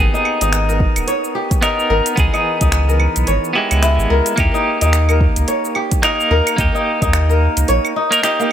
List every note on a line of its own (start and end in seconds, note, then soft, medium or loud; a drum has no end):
0.00 1.36 A#3 medium
0.00 1.59 B3 medium
0.00 0.13 D#4 medium
0.00 1.60 D#4 medium
0.00 1.27 G4 medium
0.00 1.61 G#4 medium
0.00 0.68 A#4 medium
0.14 0.41 D#4 medium
0.14 cabasa soft
0.25 claves medium
0.41 0.88 G#1 medium
0.41 1.62 D#4 medium
0.41 closed hi-hat medium
0.41 cabasa medium
0.53 finger snap medium
0.53 closed hi-hat soft
0.53 cabasa medium
0.69 1.90 A#4 medium
0.69 cabasa soft
0.80 kick loud
0.96 1.04 D#1 medium
0.96 closed hi-hat medium
0.96 cabasa medium
0.96 claves medium
1.08 2.22 C#5 loud
1.08 closed hi-hat soft
1.08 cabasa medium
1.24 cabasa soft
1.35 2.76 G4 medium
1.51 kick loud
1.51 closed hi-hat soft
1.51 cabasa medium
1.61 2.14 B3 medium
1.61 2.15 D#4 medium
1.61 2.33 D#4 medium
1.61 2.15 A#4 medium
1.61 finger snap loud
1.61 closed hi-hat soft
1.61 cabasa medium
1.61 claves medium
1.80 cabasa soft
1.90 2.01 G#1 loud
1.90 2.88 A#4 loud
2.06 closed hi-hat medium
2.06 cabasa medium
2.16 2.29 C#2 loud
2.16 3.53 E3 medium
2.16 3.52 B3 medium
2.16 3.54 G#4 loud
2.16 kick loud
2.16 closed hi-hat soft
2.16 cabasa medium
2.34 2.61 D#4 medium
2.34 cabasa soft
2.34 claves medium
2.61 3.08 C#2 medium
2.61 3.88 D#4 medium
2.61 kick loud
2.61 closed hi-hat medium
2.61 cabasa medium
2.72 finger snap loud
2.72 closed hi-hat soft
2.72 cabasa medium
2.89 4.10 A#4 medium
2.89 cabasa soft
3.00 claves medium
3.16 3.24 B1 medium
3.16 closed hi-hat medium
3.16 cabasa medium
3.27 3.39 G#1 loud
3.27 4.42 C#5 loud
3.27 closed hi-hat soft
3.27 cabasa medium
3.44 cabasa soft
3.53 4.34 B3 medium
3.53 4.35 E4 medium
3.53 4.96 G4 medium
3.57 4.35 G#3 loud
3.71 3.99 C#2 loud
3.71 closed hi-hat medium
3.71 cabasa medium
3.71 claves medium
3.82 4.60 E4 medium
3.82 finger snap loud
3.82 closed hi-hat soft
3.82 cabasa medium
3.99 4.07 G#1 medium
3.99 cabasa soft
4.10 4.21 C#2 loud
4.10 5.09 A#4 loud
4.26 closed hi-hat medium
4.26 cabasa medium
4.36 4.49 D#2 loud
4.36 5.99 A#3 medium
4.36 6.00 D#4 medium
4.36 6.01 G4 loud
4.36 kick loud
4.36 closed hi-hat soft
4.36 cabasa medium
4.36 claves medium
4.54 4.81 D#4 medium
4.54 cabasa soft
4.81 5.28 D#2 medium
4.81 6.03 D#4 medium
4.81 closed hi-hat medium
4.81 cabasa medium
4.93 finger snap loud
4.93 closed hi-hat soft
4.93 cabasa medium
5.09 6.30 A#4 medium
5.09 cabasa soft
5.09 claves medium
5.21 kick loud
5.36 5.44 C#2 medium
5.36 closed hi-hat medium
5.36 cabasa medium
5.48 6.63 C#5 loud
5.48 closed hi-hat soft
5.48 cabasa medium
5.65 cabasa soft
5.75 7.17 G4 medium
5.75 claves medium
5.91 kick loud
5.91 closed hi-hat medium
5.91 cabasa medium
6.02 6.55 A#3 medium
6.02 6.56 D#4 medium
6.02 6.74 D#4 medium
6.02 6.56 A#4 medium
6.02 finger snap loud
6.02 closed hi-hat soft
6.02 cabasa medium
6.20 cabasa soft
6.31 6.41 D#2 loud
6.31 7.29 A#4 loud
6.47 closed hi-hat medium
6.47 cabasa medium
6.47 claves medium
6.56 6.69 D#2 loud
6.56 7.92 A#3 medium
6.56 7.93 D#4 medium
6.56 kick loud
6.56 closed hi-hat soft
6.56 cabasa medium
6.61 7.94 G4 loud
6.75 7.02 D#4 medium
6.75 cabasa soft
7.02 7.48 D#2 loud
7.02 7.96 D#4 medium
7.02 kick loud
7.02 closed hi-hat medium
7.02 cabasa medium
7.13 finger snap loud
7.13 closed hi-hat soft
7.13 cabasa medium
7.13 claves medium
7.29 8.52 A#4 medium
7.29 cabasa soft
7.57 7.65 C#2 medium
7.57 closed hi-hat medium
7.57 cabasa medium
7.68 7.79 A#1 loud
7.68 8.52 C#5 loud
7.68 closed hi-hat soft
7.68 cabasa medium
7.85 cabasa soft
7.85 claves medium
7.96 8.23 D#4 medium
8.11 8.20 A#3 loud
8.11 8.20 D#4 loud
8.11 8.21 A#4 loud
8.11 closed hi-hat medium
8.11 cabasa medium
8.22 8.52 A#3 medium
8.22 8.52 D#4 medium
8.22 8.52 G4 medium
8.22 finger snap loud
8.22 closed hi-hat medium
8.22 cabasa medium
8.40 8.52 A#3 medium
8.40 cabasa soft